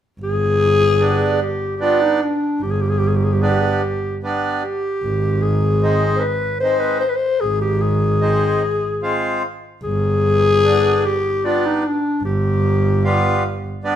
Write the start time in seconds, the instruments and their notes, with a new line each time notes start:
0.20 double bass G1, clarinet G#4
0.99 accordion G3 B3 D4
1.33 clarinet G#4
1.41 clarinet G4
1.76 accordion G3 B3, clarinet G4
1.81 accordion D4, clarinet F4
2.02 clarinet D#4
2.22 clarinet D4
2.61 double bass G1, clarinet G4
2.71 clarinet G#4
2.81 clarinet G4
2.90 clarinet G#4
2.99 clarinet G4
3.08 clarinet G#4
3.16 clarinet G4
3.24 clarinet G#4
3.33 clarinet G4
3.41 accordion G3 B3 D4, clarinet G#4
3.49 clarinet G4
3.59 clarinet G#4
3.67 clarinet G4
4.23 accordion G3 B3 D4
4.62 clarinet G4
5.03 double bass G#1
5.42 clarinet G#4
5.82 accordion G#3 C4 D#4
6.16 clarinet B4 C5
6.60 accordion G#3 C4 D#4, clarinet C5
6.79 clarinet B4
7.00 clarinet C5
7.09 clarinet B4
7.15 clarinet C5
7.40 double bass G#1, clarinet G#4
7.61 clarinet G4
7.81 clarinet G#4
8.20 accordion G#3 C4 D#4
9.02 accordion G#3 C4 F4
9.83 double bass G1, clarinet G#4
10.64 accordion D3 B3 D4
11.06 clarinet G4
11.44 accordion G3 B3 D4, clarinet F4
11.66 clarinet D#4
11.87 clarinet D4
12.23 double bass G1, clarinet G4
13.04 accordion G3 B3 F4
13.84 accordion G3 B3 D4